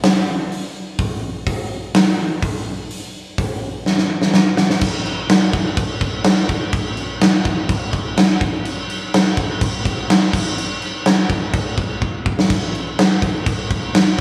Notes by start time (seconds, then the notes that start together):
0.03 snare, open hi-hat
0.52 open hi-hat
0.99 kick, open hi-hat
1.47 kick, open hi-hat
1.94 snare, open hi-hat
2.43 kick, open hi-hat
2.90 open hi-hat
3.38 kick, open hi-hat
3.86 snare
3.98 snare
4.22 snare
4.34 snare
4.57 snare
4.70 snare
4.81 kick, crash
5.06 crash
5.29 snare, crash
5.53 kick, crash
5.77 kick, crash
6.01 kick, crash
6.24 snare, crash
6.49 kick, crash
6.73 kick, crash
6.97 crash
7.21 snare, crash
7.45 kick, crash
7.69 kick, crash
7.93 kick, crash
8.17 snare, crash
8.41 kick, crash
8.65 crash
8.90 crash
9.14 snare, crash
9.37 kick, crash
9.61 kick, crash
9.85 kick, crash
10.10 snare, crash
10.33 kick, crash
10.58 crash
10.82 crash
11.06 snare, crash
11.30 kick, crash
11.54 kick, crash
11.78 kick, crash
12.02 kick
12.26 kick
12.39 snare
12.50 kick, splash, crash
12.75 crash
12.99 snare, crash
13.22 kick, crash
13.46 kick, crash
13.71 kick, crash
13.95 snare, crash